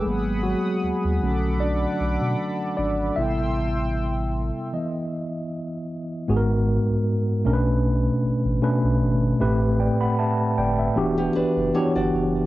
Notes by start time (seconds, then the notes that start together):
Already playing: G#3 G#4
0.05 G#1 F#3 A#3 B3 G#4 F#5 B5 D#6
0.43 F#3 F#4
0.83 D#2
1.04 D#2
1.22 B1 D3 A3 C#4 A4 F#5 B5 D6
1.60 D4 D5
2.00 B1
2.21 B2
2.77 G#1 D4 D5
3.16 A1 C3 G3 B3 E4 E5 G5 C6 E6
4.73 E3 B3 D#5
6.28 G#1 G#2 G#3 B3 F#4 G#4
6.37 A#4
6.89 B1
7.45 B1 B2 A3 C#4 D4 A#4
7.53 B4
8.24 A1
8.45 A1
8.62 B2 A3 C#4 D4 B4
8.84 B1
9.02 G#1
9.39 A1 A2 A3 C4 G4 B4
9.80 D5 G5
10.00 G1 F#5 B5
10.19 E5 A5
10.57 G1 D5 G5
10.79 B4 E5
10.96 E1 E3 B3 D4 F#4 G4
11.18 B3 G4
11.35 F#1 D4 B4
11.57 F#1
11.74 E3 B3 D4 E4 F#4 G4 C#5
11.95 G1 F#4 D5
12.14 F#1